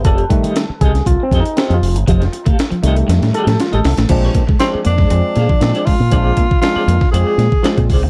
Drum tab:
CC |----------------|----------------|x---------------|----------------|
HH |xxxxx-xxx-xxxxox|xxxxxxxxxxxxxxox|x-x-x-x-x-x-xxo-|x-x-x-x-x-x-xxo-|
SD |----o--o--o-o---|-o--o---oo-oo-oo|----o--o--o-o---|----o--o--o-o---|
BD |o-o---o-o-o-----|o--o------------|o-oo---o---o--o-|o-oo---o---o-oo-|